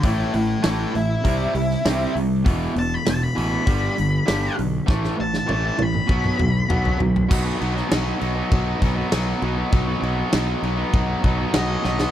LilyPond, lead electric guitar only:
\new Staff \with { instrumentName = "Lead electric guitar" } { \time 4/4 \key b \phrygian \tempo 4 = 99 <e' a'>8 <e' a'>8 <e' a'>8 e'2 r8 | r8 a''16 b''16 a''16 b''16 b''2 r8 | r8 a''16 a''16 a''16 a''16 b''2 r8 | r1 |
r2. dis''8 dis''8 | }